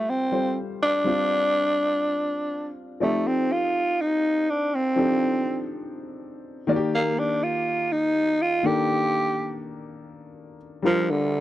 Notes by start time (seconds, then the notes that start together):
Already playing: G3 A3 F4 G4 A4
0.10 C4
0.32 G3 F4 A4 C5
0.82 D4
1.04 G3 C4 D4 F4
3.00 F3 A3 C4 D#4 G4 A4 D5
3.27 C4
3.52 F4
4.01 D#4
4.50 D4
4.75 C4
4.96 F3 C4 D4 D#4 G4 A4
6.67 D#3 A#3 F#4 D5
6.76 G4
6.95 A#3
7.19 D4
7.43 F4
7.92 D#4
8.42 F4
8.63 D#3 A#3 D4 G4 A4
10.82 F3 G3 D4 F4 A#4
11.10 D3